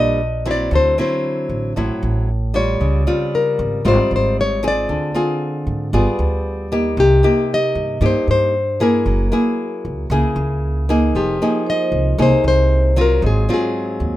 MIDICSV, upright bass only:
0, 0, Header, 1, 2, 480
1, 0, Start_track
1, 0, Key_signature, -4, "minor"
1, 0, Tempo, 521286
1, 658, Time_signature, 4, 2, 24, 8
1, 13045, End_track
2, 0, Start_track
2, 0, Title_t, "Upright bass"
2, 0, Program_c, 0, 32
2, 0, Note_on_c, 0, 34, 84
2, 620, Note_off_c, 0, 34, 0
2, 655, Note_on_c, 0, 38, 89
2, 880, Note_off_c, 0, 38, 0
2, 1375, Note_on_c, 0, 33, 72
2, 1600, Note_off_c, 0, 33, 0
2, 1629, Note_on_c, 0, 33, 88
2, 1736, Note_off_c, 0, 33, 0
2, 1865, Note_on_c, 0, 33, 85
2, 2546, Note_off_c, 0, 33, 0
2, 2585, Note_on_c, 0, 37, 77
2, 2806, Note_off_c, 0, 37, 0
2, 3304, Note_on_c, 0, 32, 86
2, 3525, Note_off_c, 0, 32, 0
2, 3546, Note_on_c, 0, 32, 101
2, 3655, Note_off_c, 0, 32, 0
2, 3783, Note_on_c, 0, 32, 80
2, 4465, Note_off_c, 0, 32, 0
2, 4502, Note_on_c, 0, 38, 84
2, 4725, Note_off_c, 0, 38, 0
2, 5217, Note_on_c, 0, 44, 79
2, 5442, Note_off_c, 0, 44, 0
2, 5461, Note_on_c, 0, 31, 101
2, 5572, Note_off_c, 0, 31, 0
2, 5697, Note_on_c, 0, 38, 81
2, 6381, Note_off_c, 0, 38, 0
2, 6418, Note_on_c, 0, 36, 91
2, 6642, Note_off_c, 0, 36, 0
2, 7138, Note_on_c, 0, 43, 80
2, 7362, Note_off_c, 0, 43, 0
2, 7373, Note_on_c, 0, 43, 97
2, 7487, Note_off_c, 0, 43, 0
2, 7620, Note_on_c, 0, 43, 77
2, 8303, Note_off_c, 0, 43, 0
2, 8338, Note_on_c, 0, 30, 87
2, 8562, Note_off_c, 0, 30, 0
2, 9068, Note_on_c, 0, 37, 79
2, 9286, Note_off_c, 0, 37, 0
2, 9298, Note_on_c, 0, 37, 95
2, 9410, Note_off_c, 0, 37, 0
2, 9536, Note_on_c, 0, 37, 85
2, 10220, Note_off_c, 0, 37, 0
2, 10265, Note_on_c, 0, 29, 75
2, 10485, Note_off_c, 0, 29, 0
2, 10973, Note_on_c, 0, 36, 85
2, 11198, Note_off_c, 0, 36, 0
2, 11219, Note_on_c, 0, 36, 98
2, 11329, Note_off_c, 0, 36, 0
2, 11455, Note_on_c, 0, 36, 82
2, 12138, Note_off_c, 0, 36, 0
2, 12174, Note_on_c, 0, 32, 85
2, 12398, Note_off_c, 0, 32, 0
2, 12891, Note_on_c, 0, 39, 82
2, 13045, Note_off_c, 0, 39, 0
2, 13045, End_track
0, 0, End_of_file